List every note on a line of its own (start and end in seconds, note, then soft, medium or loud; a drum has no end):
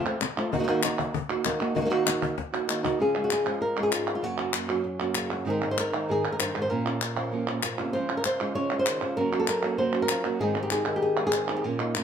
0.05 0.20 F3 soft
0.05 0.20 A3 soft
0.05 0.21 A3 soft
0.05 0.20 C4 soft
0.05 0.21 C4 soft
0.05 0.20 F4 medium
0.05 0.21 F4 soft
0.21 muted nylon-string guitar stroke soft
0.21 cajon slap loud
0.21 clap medium
0.37 0.52 F3 soft
0.37 0.53 A3 soft
0.37 0.53 C4 soft
0.37 0.52 F4 medium
0.52 0.67 D#3 medium
0.52 0.54 D#3 medium
0.52 0.55 A#3 medium
0.52 0.68 A#3 medium
0.52 0.67 D#4 medium
0.52 0.56 D#4 medium
0.52 0.56 F#4 medium
0.52 0.66 F#4 medium
0.52 cajon bass loud
0.59 0.62 D#3 medium
0.59 0.62 A#3 medium
0.59 0.63 D#4 medium
0.59 0.63 F#4 medium
0.63 0.66 D#3 medium
0.63 0.67 A#3 medium
0.63 0.68 D#4 medium
0.63 0.68 F#4 medium
0.63 0.82 F#4 soft
0.68 0.83 D#3 medium
0.68 0.83 A#3 medium
0.68 0.83 A#3 soft
0.68 0.83 D#4 soft
0.68 0.83 D#4 medium
0.68 0.82 F#4 loud
0.83 1.13 D#3 soft
0.83 1.13 A#3 soft
0.83 1.13 D#4 soft
0.83 1.13 F#4 soft
0.83 1.14 F#4 soft
0.83 cajon slap loud
0.83 clap medium
0.99 cajon bass medium
0.99 clap soft
1.14 muted nylon-string guitar stroke soft
1.14 cajon bass loud
1.29 1.60 A#3 soft
1.29 1.60 D#4 soft
1.29 1.59 F#4 soft
1.45 1.60 D#3 medium
1.45 1.60 A#3 medium
1.45 1.59 D#4 medium
1.45 1.59 F#4 medium
1.45 cajon bass medium
1.45 cajon slap loud
1.45 clap medium
1.60 1.74 A#3 soft
1.60 1.75 A#3 soft
1.60 1.75 D#4 soft
1.60 1.76 D#4 soft
1.60 1.75 F#4 medium
1.60 1.75 F#4 soft
1.60 clap soft
1.75 1.77 D#3 medium
1.75 1.90 D#3 medium
1.75 1.77 A#3 medium
1.75 1.91 A#3 medium
1.75 1.78 D#4 medium
1.75 1.91 D#4 medium
1.75 1.79 F#4 medium
1.75 1.90 F#4 medium
1.75 cajon bass medium
1.81 1.84 D#3 medium
1.81 1.85 A#3 medium
1.81 1.85 D#4 medium
1.81 1.86 F#4 medium
1.85 1.89 D#3 medium
1.85 1.89 A#3 medium
1.85 1.89 D#4 medium
1.85 1.90 F#4 medium
1.90 2.05 D#3 medium
1.90 2.06 A#3 medium
1.90 2.06 A#3 soft
1.90 2.05 D#4 medium
1.90 2.06 D#4 soft
1.90 2.06 F#4 soft
1.90 2.04 F#4 medium
2.05 2.36 D#3 soft
2.05 2.37 A#3 soft
2.05 2.37 D#4 soft
2.05 2.36 F#4 medium
2.05 2.37 F#4 soft
2.05 cajon slap loud
2.05 clap medium
2.22 cajon bass medium
2.22 clap soft
2.37 muted nylon-string guitar stroke soft
2.37 cajon bass loud
2.37 cajon slap soft
2.52 2.84 A#3 soft
2.52 2.84 D#4 soft
2.52 2.83 F#4 soft
2.52 cajon slap medium
2.68 2.83 D#3 medium
2.68 2.83 A#3 soft
2.68 2.82 D#4 medium
2.68 2.82 F#4 medium
2.68 clap medium
2.83 2.99 A#3 soft
2.83 3.00 A#3 soft
2.83 2.98 D#4 soft
2.83 2.99 D#4 soft
2.83 2.98 F#4 soft
2.83 2.99 F#4 soft
2.83 cajon bass medium
2.83 clap soft
2.99 3.29 C#3 medium
2.99 3.46 C#3 medium
2.99 3.29 F3 medium
2.99 3.29 G#3 medium
2.99 3.30 C#4 medium
2.99 3.30 F4 medium
2.99 3.31 G#4 medium
3.16 3.46 G#3 soft
3.24 3.31 F#4 medium
3.30 3.45 F3 soft
3.30 3.45 G#3 soft
3.30 3.44 C#4 soft
3.30 3.43 F4 soft
3.30 3.61 G#4 medium
3.30 clap medium
3.44 4.21 F3 medium
3.44 3.60 G#3 soft
3.44 3.76 G#3 soft
3.44 3.60 C#4 soft
3.44 3.60 F4 soft
3.44 clap soft
3.60 3.83 A#4 medium
3.60 muted nylon-string guitar stroke soft
3.76 4.23 G#3 soft
3.76 4.22 C#4 soft
3.76 4.22 F4 soft
3.83 3.91 G#4 medium
3.91 4.21 G#2 soft
3.91 4.14 F4 medium
3.91 clap medium
4.07 clap soft
4.15 4.24 F4 medium
4.22 4.53 F#2 medium
4.22 5.45 F#2 medium
4.22 4.53 C#3 medium
4.22 4.52 F#3 medium
4.22 4.52 A#3 medium
4.22 4.53 C#4 medium
4.22 5.31 F#4 medium
4.22 4.54 F#4 medium
4.39 4.69 C#4 soft
4.53 4.68 F#3 soft
4.53 4.68 A#3 soft
4.53 4.68 C#4 soft
4.53 clap medium
4.68 5.45 F#3 medium
4.68 4.83 F#3 soft
4.68 4.83 A#3 soft
4.68 4.83 C#4 soft
4.68 5.00 C#4 soft
4.68 4.83 F#4 soft
4.68 clap soft
4.84 muted nylon-string guitar stroke soft
4.99 5.45 F#3 soft
4.99 5.46 A#3 soft
4.99 5.45 C#4 soft
4.99 5.46 C#4 soft
4.99 5.45 F#4 soft
4.99 clap soft
5.15 5.45 C#3 medium
5.15 5.45 A#3 soft
5.15 clap medium
5.33 5.46 F#4 soft
5.45 5.61 G#2 medium
5.45 6.38 G#2 medium
5.45 5.61 D#3 medium
5.45 5.92 D#3 soft
5.45 5.61 G#3 medium
5.45 5.61 C4 medium
5.45 6.69 C4 soft
5.45 5.60 D#4 medium
5.45 5.60 G#4 medium
5.49 5.63 D#4 soft
5.49 5.71 A#4 medium
5.61 5.76 G#3 soft
5.61 5.76 C4 soft
5.61 5.77 D#4 soft
5.61 5.93 D#4 soft
5.61 5.76 G#4 soft
5.71 5.78 C5 loud
5.77 6.10 A#4 medium
5.77 muted nylon-string guitar stroke soft
5.77 clap medium
5.92 6.70 D#3 medium
5.92 6.08 G#3 soft
5.92 6.08 C4 soft
5.92 6.08 D#4 soft
5.92 6.69 D#4 soft
5.92 6.07 G#4 soft
6.08 6.23 G#2 medium
6.08 6.23 D#3 medium
6.08 6.24 G#3 medium
6.08 6.24 C4 medium
6.08 6.23 D#4 medium
6.08 6.22 G#4 medium
6.08 6.32 G#4 medium
6.23 6.38 G#3 soft
6.23 6.38 C4 soft
6.23 6.38 D#4 soft
6.23 6.38 G#4 soft
6.32 6.39 A#4 medium
6.39 6.55 G2 medium
6.39 6.61 C5 medium
6.39 muted nylon-string guitar stroke soft
6.39 clap medium
6.54 6.70 G#2 medium
6.54 6.69 G#3 soft
6.54 6.70 C4 soft
6.54 6.70 D#4 soft
6.54 6.69 G#4 soft
6.62 6.70 C5 medium
6.69 6.85 A#2 medium
6.69 7.62 A#2 medium
6.69 6.85 F3 medium
6.69 6.85 A#3 medium
6.69 6.85 C#4 medium
6.69 6.84 F4 medium
6.69 7.93 A#4 medium
6.85 7.00 A#3 soft
6.85 7.00 C#4 soft
6.85 7.96 C#4 soft
6.85 7.00 F4 soft
7.00 muted nylon-string guitar stroke soft
7.00 clap medium
7.16 7.92 F3 medium
7.16 7.31 A#3 soft
7.16 7.32 C#4 soft
7.16 7.31 F4 soft
7.16 clap soft
7.31 7.47 A#2 medium
7.31 7.47 F3 medium
7.31 7.47 A#3 medium
7.31 7.47 C#4 medium
7.31 7.46 F4 medium
7.47 7.62 A#3 soft
7.47 7.62 C#4 soft
7.47 7.62 F4 soft
7.63 7.79 A#2 medium
7.63 muted nylon-string guitar stroke soft
7.63 clap medium
7.78 7.95 C3 medium
7.78 7.94 A#3 soft
7.78 7.94 C#4 soft
7.78 7.93 F4 soft
7.93 8.08 C#3 medium
7.93 9.16 C#3 medium
7.93 8.09 F3 medium
7.93 8.09 G#3 medium
7.93 8.09 C#4 medium
7.93 8.08 F4 medium
7.93 8.17 C5 loud
8.09 8.24 G#3 soft
8.09 8.24 C#4 soft
8.09 8.24 F4 soft
8.17 8.25 A#4 medium
8.24 8.55 C5 medium
8.24 muted nylon-string guitar stroke soft
8.24 clap medium
8.40 8.87 G#3 medium
8.40 8.55 G#3 soft
8.40 8.55 C#4 soft
8.40 8.55 F4 soft
8.40 clap soft
8.54 8.70 C#3 medium
8.54 8.70 F3 medium
8.54 8.71 G#3 medium
8.54 8.71 C#4 medium
8.54 8.70 F4 medium
8.54 8.79 C#5 loud
8.71 8.85 G#3 soft
8.71 8.85 C#4 soft
8.71 8.86 F4 soft
8.71 9.17 F4 soft
8.79 9.16 C5 medium
8.86 9.02 D#3 medium
8.86 muted nylon-string guitar stroke soft
8.86 clap medium
9.01 9.18 F3 medium
9.01 9.17 G#3 soft
9.01 9.17 C#4 soft
9.01 9.17 F4 soft
9.16 9.32 F#2 medium
9.16 9.32 C#3 medium
9.16 9.32 F#3 medium
9.16 10.25 F#3 medium
9.16 9.32 A#3 medium
9.16 9.31 C#4 medium
9.16 9.31 F#4 medium
9.16 9.47 A#4 loud
9.32 9.47 F#3 soft
9.32 9.47 A#3 soft
9.32 9.47 C#4 soft
9.32 10.40 C#4 soft
9.32 9.47 F#4 soft
9.40 9.79 A4 medium
9.47 9.78 A#4 medium
9.47 muted nylon-string guitar stroke soft
9.47 clap medium
9.62 9.77 F#3 soft
9.62 10.09 A#3 medium
9.62 9.77 A#3 soft
9.62 9.77 C#4 soft
9.62 9.78 F#4 soft
9.77 9.93 F#2 medium
9.77 9.93 C#3 medium
9.77 9.94 F#3 medium
9.77 9.93 A#3 medium
9.77 9.92 C#4 medium
9.77 9.92 F#4 medium
9.77 10.02 C5 medium
9.93 10.07 F#3 soft
9.93 10.08 A#3 soft
9.93 10.08 C#4 soft
9.93 10.08 F#4 soft
10.02 10.40 A#4 medium
10.09 10.25 F3 soft
10.09 muted nylon-string guitar stroke soft
10.09 clap medium
10.24 10.40 F#3 soft
10.24 10.41 F#3 medium
10.24 10.40 A#3 soft
10.24 10.40 C#4 soft
10.24 10.40 F#4 soft
10.24 clap soft
10.39 10.55 G#2 medium
10.39 11.63 G#2 medium
10.39 10.55 D#3 medium
10.39 10.86 D#3 soft
10.39 10.55 G#3 medium
10.39 10.54 C4 medium
10.39 10.56 C4 soft
10.39 10.54 D#4 medium
10.39 10.70 G#4 medium
10.39 10.53 G#4 medium
10.43 10.62 D#4 soft
10.54 10.69 G#3 soft
10.54 10.70 C4 soft
10.54 11.33 C4 soft
10.54 10.71 D#4 soft
10.54 10.70 G#4 soft
10.63 10.94 G4 loud
10.70 11.01 G#3 soft
10.70 11.01 C4 soft
10.70 11.01 D#4 soft
10.70 11.01 G#4 medium
10.70 11.02 G#4 soft
10.70 clap medium
10.87 11.32 D#3 medium
10.96 11.34 G4 medium
11.02 11.25 G#4 medium
11.02 muted nylon-string guitar stroke soft
11.17 11.49 G#3 soft
11.17 11.48 C4 soft
11.17 11.47 D#4 soft
11.17 11.47 G#4 soft
11.27 11.64 G#4 medium
11.32 11.63 D#3 medium
11.32 11.49 C4 soft
11.32 clap medium
11.48 11.64 G#3 soft
11.48 11.64 C4 soft
11.48 11.63 C4 soft
11.48 11.64 D#4 soft
11.48 11.63 G#4 soft
11.57 11.64 G4 medium
11.63 11.79 A#2 medium
11.63 12.04 A#2 medium
11.63 11.79 F3 medium
11.63 11.79 A#3 medium
11.63 11.79 C#4 medium
11.63 12.04 F4 loud
11.63 11.77 F4 medium
11.79 11.94 A#3 soft
11.79 11.95 C#4 soft
11.79 11.96 D#4 medium
11.79 11.94 F4 soft
11.94 12.04 A2 medium
11.94 12.04 F3 soft
11.94 12.04 A#3 soft
11.94 12.04 C#4 soft
11.94 12.04 C#4 medium
11.94 12.04 F4 soft
11.94 clap medium